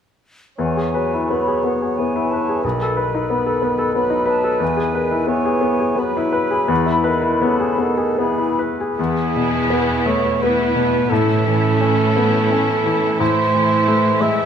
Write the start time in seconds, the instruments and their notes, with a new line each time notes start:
0.58 grand piano E2, bassoon E3, cor anglais C#5, flute G#5
0.77 grand piano G#4
0.94 bassoon F#3, grand piano B4
1.14 grand piano E4
1.30 grand piano B3, flute B5
1.47 grand piano G#4
1.64 grand piano B3, flute F#5
1.81 grand piano G#4
1.98 bassoon E3, grand piano B3, flute G#5
2.16 grand piano E4
2.31 grand piano B4, flute A5
2.49 grand piano G#4
2.63 grand piano B1, bassoon D#3, cor anglais B4, flute B5
2.82 grand piano A4
2.97 grand piano B4
3.14 grand piano D#4
3.30 grand piano B3
3.46 grand piano A4
3.62 grand piano B3
3.78 grand piano A4
3.95 bassoon F#3, grand piano B3, cor anglais B4, flute B5
4.10 grand piano D#4
4.26 grand piano B4, flute A5
4.44 grand piano A4
4.60 grand piano E2, bassoon E3, flute G#5
4.77 grand piano G#4
4.94 bassoon D#3, grand piano B4
5.11 grand piano E4
5.27 bassoon E3, grand piano B3, cor anglais C#5, flute G#5
5.46 grand piano G#4
5.61 grand piano B3
5.79 grand piano G#4
5.95 bassoon F#3, grand piano B3, cor anglais B4
6.00 flute B5
6.17 grand piano E4
6.32 grand piano B4
6.50 grand piano G#4
6.68 grand piano E2, bassoon E3
6.86 grand piano E4
7.04 bassoon D#3, grand piano B4
7.22 grand piano E4
7.42 bassoon C#3, grand piano B3, cor anglais A4
7.60 grand piano G#4
7.78 bassoon D#3, grand piano B3
7.97 grand piano G#4
8.18 bassoon E3, grand piano B3, cor anglais G#4, flute B5
8.38 grand piano E4
8.59 grand piano B4
8.80 grand piano G#4
8.98 cello section E2, grand piano E2, viola section E3 B3, violin section B3 E4, cor anglais G#4
9.36 grand piano B2
9.70 grand piano B3
10.06 grand piano A3, cor anglais C#5
10.41 viola section E3 B3, violin section B3 E4, grand piano B3, cor anglais B4
10.75 grand piano B2
11.10 cello section A2, grand piano A2, viola section E3 A3, violin section C#4 E4, cor anglais A4
11.45 grand piano E3
11.81 grand piano C#4
12.16 grand piano B3
12.52 grand piano C#4
12.86 grand piano E3
13.20 grand piano A2, viola section E3 A3, violin section E4, cor anglais C5
13.54 grand piano E3
13.87 grand piano A3
14.20 grand piano G#3, cor anglais E5